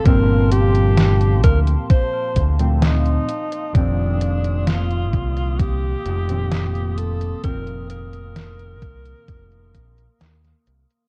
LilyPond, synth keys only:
\new Staff \with { instrumentName = "Synth keys" } { \clef bass \time 4/4 \key f \mixolydian \tempo 4 = 65 <bes, f bes c'>2~ <bes, f bes c'>8. <bes, f a c'>8. r8 | <bes, ees f c'>2~ <bes, ees f c'>8. <bes, ees f c'>4~ <bes, ees f c'>16 | <bes, ees f c'>2~ <bes, ees f c'>8. r4 r16 | }